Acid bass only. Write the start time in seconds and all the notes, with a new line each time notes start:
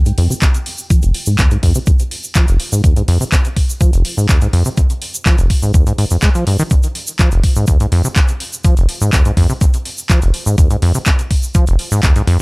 0.06 G#2
0.18 F2
0.30 C3
0.42 F2
0.90 F3
1.03 F1
1.27 G#2
1.39 D#2
1.51 G#2
1.63 F2
1.75 C3
1.87 F2
2.36 F3
2.48 F1
2.72 G#2
2.84 D#2
2.96 G#2
3.08 F2
3.21 C3
3.32 F2
3.81 F3
3.93 F1
4.17 G#2
4.29 D#2
4.42 G#2
4.53 F2
4.66 C3
4.77 F2
5.26 F3
5.38 F1
5.63 G#2
5.74 D#2
5.87 G#2
5.98 G#2
6.11 F2
6.23 G#3
6.35 F3
6.47 G2
6.59 D#3
6.71 F2
7.19 F3
7.32 F1
7.56 G#2
7.68 D#2
7.80 G#2
7.92 F2
8.04 C3
8.16 F2
8.64 F3
8.77 F1
9.01 G#2
9.13 D#2
9.25 G#2
9.37 F2
9.50 C3
9.61 F2
10.10 F3
10.22 F1
10.46 G#2
10.58 D#2
10.71 G#2
10.82 F2
10.95 C3
11.06 F2
11.55 F3
11.67 F1
11.92 G#2
12.03 D#2
12.16 G#2
12.27 F2